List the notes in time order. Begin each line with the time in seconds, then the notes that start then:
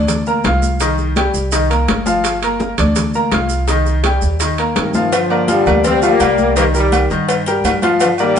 Already playing: D2 D4 D5 D6
0.08 high bongo, high conga, low conga, high timbale, maracas
0.26 A#3 A#4 A#5, high conga, maracas
0.44 C2 F4 F5 F6, high bongo, low bongo, high conga, high timbale, maracas
0.62 high bongo, high conga, maracas
0.80 D#3 D#4 D#5, high bongo, high timbale, maracas
0.98 high bongo, high conga, maracas
1.16 G3 G4 G5, high bongo, high conga, high timbale, maracas
1.34 C2, high bongo, high conga, maracas
1.52 D#3 D#4 D#5, high bongo, high conga, high timbale, maracas
1.70 A#3 A#4 A#5, high conga, high timbale, maracas
1.88 G1, high bongo, low bongo, high conga, high timbale, maracas
2.06 F3 F4 F5, high bongo, high conga, maracas
2.24 high bongo, high conga, high timbale, maracas
2.42 A#3 A#4 A#5, high bongo, high conga, high timbale, maracas
2.60 high bongo, high conga, maracas
2.77 D2 D4 D5 D6, high bongo, low conga, high timbale, maracas
2.95 high bongo, high conga, low conga, high timbale, maracas
3.14 A#3 A#4 A#5, high conga, maracas
3.32 C2 F4 F5 F6, high bongo, low bongo, high conga, high timbale, maracas
3.49 high bongo, maracas
3.68 D#3 D#4 D#5, high bongo, high conga, high timbale, maracas
3.86 high bongo, high conga, maracas
4.04 G3 G4 G5, high bongo, high conga, high timbale, maracas
4.22 D#2, high bongo, high conga, maracas
4.40 D#3 D#4 D#5, high bongo, high conga, high timbale, maracas
4.58 A#3 A#4 A#5, high conga, high timbale, maracas
4.76 G2 C3 D#3, high bongo, low bongo, high conga, high timbale, maracas
4.94 F3 F4 F5, high bongo, high conga, maracas
5.12 D3 F3, cowbell, high conga, low agogo, maracas
5.30 A#3 A#4 D5, high conga, low agogo
5.48 D3 F3 G3 F4 F5, cowbell, high conga, maracas
5.66 D2 A#3 A#4 D5, low conga, low agogo, maracas
5.84 G3 C4, cowbell, high conga, low conga, maracas
6.02 F3 G3 A#3 F4 F5, high conga, low agogo, maracas
6.19 C2 A#3 A#4 D5, cowbell, high conga, low agogo, maracas
6.38 high conga, maracas
6.56 D#3 G3 A#3 D#4 D#5, cowbell, high conga, low agogo, maracas
6.74 D#3 G3 G4 A#4, high conga, maracas
6.92 cowbell, high conga, low agogo, maracas
7.10 G2 D#3 D#4 D#5, high conga, maracas
7.28 cowbell, high conga, low agogo, maracas
7.46 G3 G4 A#4, cowbell, high conga, maracas
7.64 G2, cowbell, high conga, low timbale, low agogo, maracas
7.82 F3 F4 F5, cowbell, high conga, low agogo, maracas
8.00 D3 F3, cowbell, high conga, low agogo, maracas
8.18 D#3 G3 A#3 A#4 D5, high conga, low agogo, maracas
8.36 maracas